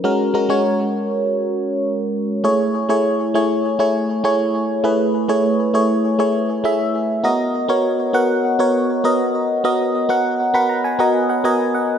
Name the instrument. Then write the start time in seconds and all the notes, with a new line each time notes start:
fm electric piano
0.04 G#3 C#4 F#4 A#4
0.34 G#3 C#4 F#4 A#4
0.49 G#3 C#4 F#4 C#5
2.44 A3 E4 G#4 C#5
2.89 A3 E4 G#4 C#5
3.34 A3 E4 G#4 C#5
3.79 A3 E4 G#4 C#5
4.24 A3 E4 G#4 C#5
4.84 A3 E4 G#4 B4
5.28 A3 E4 G#4 C#5
5.74 A3 E4 G#4 C#5
6.19 A3 E4 G#4 C#5
6.64 A3 E4 G#4 E5
7.24 B3 F#4 A#4 D#5
7.68 B3 F#4 A#4 C#5
8.13 B3 F#4 A#4 F#5
8.59 B3 F#4 A#4 C#5
9.04 B3 F#4 A#4 D#5
9.64 B3 F#4 A#4 D#5
10.09 B3 F#4 A#4 F#5
10.54 B3 F#4 A#4 F#5 B5
10.70 A#5
10.84 G#5
10.99 B3 F#4 A#4 D#5 F#5
11.29 F#5
11.44 B3 F#4 A#4 D#5 G#5
11.75 F#5